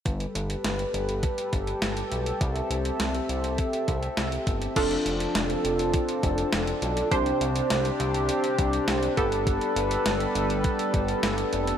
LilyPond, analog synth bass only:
\new Staff \with { instrumentName = "Analog synth bass" } { \clef bass \time 4/4 \key g \mixolydian \tempo 4 = 102 g,,8 g,,8 g,,8 g,,8. r16 g,,8 g,,8 b,,8 | c,8 c,8 c,8 c,8. r16 c,8 c,8 g,,8 | f,,8 f,,8 f,,8 f,,8. r16 f,,8 f,,8 b,,8 | c,8 c,8 c,8 c,8. r16 c,8 c,8 g,,8~ |
g,,8 g,,8 g,,8 g,,8. r16 g,,8 g,,8 f,,8 | }